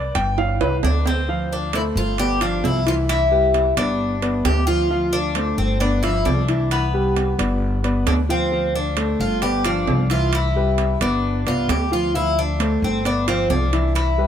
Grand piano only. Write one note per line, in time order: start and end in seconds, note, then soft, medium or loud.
0.00 0.15 D5 medium
0.15 0.37 G5 loud
0.38 0.60 F5 medium
0.61 0.74 B4 loud
1.29 1.66 F3 medium
1.29 1.66 F4 medium
1.29 1.66 F5 medium
1.74 2.11 A3 medium
1.74 2.11 A4 medium
1.74 2.11 C5 medium
2.19 2.37 B3 medium
2.19 2.38 B4 medium
2.19 2.38 D5 medium
2.41 2.78 F3 medium
2.41 2.78 F4 medium
2.41 2.79 F5 medium
2.86 3.23 E3 medium
2.86 3.24 E4 medium
2.86 3.24 E5 medium
3.32 3.69 G3 medium
3.32 3.69 G4 medium
3.32 3.69 B4 medium
3.77 4.14 B3 medium
3.77 4.14 B4 medium
3.77 4.14 D5 medium
4.22 4.59 B3 medium
4.22 4.59 B4 medium
4.22 4.60 D5 medium
4.67 4.86 F3 medium
4.67 4.86 F4 medium
4.67 4.86 F5 medium
4.90 5.27 F3 medium
4.90 5.27 F4 medium
4.90 5.28 F5 medium
5.36 5.73 A3 medium
5.36 5.73 A4 medium
5.36 5.73 C5 medium
5.81 5.99 B3 medium
5.81 5.99 B4 medium
5.81 5.99 D5 medium
6.04 6.40 F3 medium
6.04 6.41 F4 medium
6.04 6.41 F5 medium
6.48 6.85 E3 medium
6.48 6.86 E4 medium
6.48 6.86 E5 medium
6.94 7.31 G3 medium
6.94 7.31 G4 medium
6.94 7.31 B4 medium
7.38 7.76 B3 medium
7.38 7.76 B4 medium
7.38 7.76 D5 medium
7.84 8.21 B3 medium
7.84 8.21 B4 medium
7.84 8.21 D5 medium
8.29 8.48 F3 medium
8.29 8.48 F4 medium
8.29 8.48 F5 medium
8.52 8.89 F3 medium
8.52 8.89 F4 medium
8.52 8.89 F5 medium
8.97 9.34 A3 medium
8.97 9.35 A4 medium
8.97 9.35 C5 medium
9.42 9.61 B3 medium
9.42 9.61 B4 medium
9.42 9.61 D5 medium
9.65 10.02 F3 medium
9.65 10.03 F4 medium
9.65 10.03 F5 medium
10.11 10.48 E3 medium
10.11 10.48 E4 medium
10.11 10.48 E5 medium
10.56 10.93 G3 medium
10.56 10.93 G4 medium
10.56 10.94 B4 medium
11.01 11.38 B3 medium
11.01 11.38 B4 medium
11.01 11.39 D5 medium
11.46 11.84 B3 medium
11.46 11.84 B4 medium
11.46 11.84 D5 medium
11.91 12.10 F3 medium
11.91 12.10 F4 medium
11.91 12.11 F5 medium
12.14 12.52 F3 medium
12.14 12.52 F4 medium
12.14 12.52 F5 medium
12.60 12.97 A3 medium
12.60 12.97 A4 medium
12.60 12.97 C5 medium
13.05 13.24 B3 medium
13.05 13.24 B4 medium
13.05 13.24 D5 medium
13.27 13.65 F3 medium
13.27 13.65 F4 medium
13.27 13.65 F5 medium
13.73 14.10 E3 medium
13.73 14.10 E4 medium
13.73 14.10 E5 medium
14.18 14.27 G3 medium
14.18 14.27 G4 medium
14.18 14.27 B4 medium